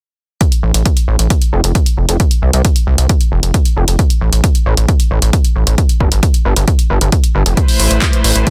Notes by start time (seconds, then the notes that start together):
0.41 kick, closed hi-hat
0.52 closed hi-hat
0.63 A1
0.74 A1, closed hi-hat
0.86 kick, closed hi-hat
0.97 closed hi-hat
1.08 A1
1.19 A1, closed hi-hat
1.30 kick, closed hi-hat
1.42 closed hi-hat
1.53 F1
1.64 F1, closed hi-hat
1.75 kick, closed hi-hat
1.86 closed hi-hat
1.97 F1
2.09 F1, closed hi-hat
2.20 kick, closed hi-hat
2.31 closed hi-hat
2.42 C2
2.53 C2, closed hi-hat
2.65 kick, closed hi-hat
2.76 closed hi-hat
2.87 C2
2.98 C2, closed hi-hat
3.09 kick, closed hi-hat
3.21 closed hi-hat
3.32 F1
3.43 F1, closed hi-hat
3.54 kick, closed hi-hat
3.65 closed hi-hat
3.77 F1
3.88 F1, closed hi-hat
3.99 kick, closed hi-hat
4.10 closed hi-hat
4.21 A1
4.33 A1, closed hi-hat
4.44 kick, closed hi-hat
4.55 closed hi-hat
4.66 A1
4.77 A1, closed hi-hat
4.88 kick, closed hi-hat
5.00 closed hi-hat
5.11 A1
5.22 A1, closed hi-hat
5.33 kick, closed hi-hat
5.45 closed hi-hat
5.56 A1
5.67 A1, closed hi-hat
5.78 kick, closed hi-hat
5.89 closed hi-hat
6.00 G1, kick
6.12 G1, closed hi-hat
6.23 kick, closed hi-hat
6.34 closed hi-hat
6.45 G1
6.56 G1, closed hi-hat
6.68 kick, closed hi-hat
6.79 closed hi-hat
6.90 G1
7.01 G1, closed hi-hat
7.12 kick, closed hi-hat
7.24 closed hi-hat
7.35 G1
7.46 F1, closed hi-hat
7.57 A3 E4 B4 C5, kick, closed hi-hat
7.68 open hi-hat
7.80 A1, open hi-hat
7.91 A1, closed hi-hat
8.02 kick, clap, closed hi-hat
8.13 closed hi-hat
8.24 A1, open hi-hat
8.36 A1, closed hi-hat
8.47 F3 C4 G4 A4, kick, closed hi-hat